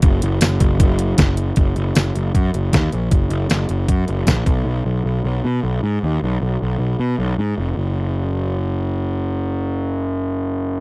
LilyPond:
<<
  \new Staff \with { instrumentName = "Picked electric bass" } { \clef bass \time 4/4 \key fis \major \tempo 4 = 155 fis,,8 fis,,8 fis,,8 fis,,8 fis,,4 fis,,4 | fis,,8 fis,,8 fis,,8 fis,,8 fis,8 fis,,8 dis,8 ais,,8 | fis,,8 fis,,8 fis,,8 fis,,8 fis,8 fis,,8 ais,,8 b,,8 | b,,8 b,,8 b,,8 b,,8 b,8 b,,8 gis,8 dis,8 |
b,,8 b,,8 b,,8 b,,8 b,8 b,,8 gis,8 eis,,8 | fis,,1~ | fis,,1 | }
  \new DrumStaff \with { instrumentName = "Drums" } \drummode { \time 4/4 <hh bd>8 hh8 <hh sn tamb>8 <hh bd>8 <hh bd>8 hh8 <hh bd sn tamb>8 hh8 | <hh bd>8 hh8 <hh sn tamb>8 hh8 <hh bd>8 hh8 <hh bd sn tamb>8 hh8 | <hh bd>8 hh8 <hh sn tamb>8 hh8 <hh bd>8 hh8 <hh bd sn tamb>8 <hh bd>8 | r4 r4 r4 r4 |
r4 r4 r4 r4 | r4 r4 r4 r4 | r4 r4 r4 r4 | }
>>